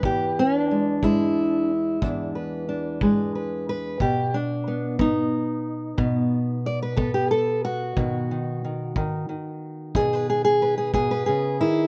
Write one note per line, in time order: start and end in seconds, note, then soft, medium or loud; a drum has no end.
0.00 0.70 B4 loud
0.00 kick medium
0.05 2.00 E2 medium
0.05 0.37 G4 medium
0.39 0.57 C#4 loud
0.57 1.70 D4 loud
0.71 1.01 G#3 soft
1.03 3.01 G#3 medium
1.03 2.35 E4 medium
1.03 kick medium
2.02 4.00 E2 medium
2.02 2.67 D4 soft
2.02 kick medium
2.35 3.02 B4 soft
2.69 3.97 D4 soft
3.01 3.97 G#3 medium
3.01 3.35 B4 soft
3.01 kick medium
3.35 3.69 B4 soft
3.69 4.01 B4 medium
4.00 5.97 B2 medium
4.00 4.34 G4 medium
4.00 kick medium
4.34 5.00 D4 medium
4.68 4.98 B3 soft
4.99 5.98 B3 medium
4.99 6.99 D#4 medium
4.99 kick medium
5.98 7.92 B2 medium
5.98 6.97 B3 medium
5.98 kick medium
6.66 6.82 D5 medium
6.82 7.65 B4 medium
6.96 10.48 B3 medium
6.96 7.14 A4 medium
6.96 kick medium
7.14 7.30 G4 medium
7.31 7.64 A4 medium
7.65 9.95 F#4 loud
7.96 8.96 B2 medium
7.96 8.30 D#3 soft
7.96 kick medium
8.31 8.63 D#3 soft
8.65 8.96 D#3 soft
8.96 9.28 D#3 medium
8.96 kick medium
9.29 10.93 D#3 soft
9.95 10.93 B2 medium
9.95 10.29 G#4 loud
9.95 kick medium
10.13 10.61 B4 medium
10.30 10.43 G#4 medium
10.45 10.76 G#4 loud
10.62 11.10 B4 medium
10.78 10.93 G#4 medium
10.94 11.27 B2 medium
10.94 11.25 G#4 medium
10.94 kick medium
11.11 11.60 B4 medium
11.26 11.60 C#3 medium
11.26 11.87 G#4 medium
11.61 11.87 D#3 medium
11.61 11.87 E4 loud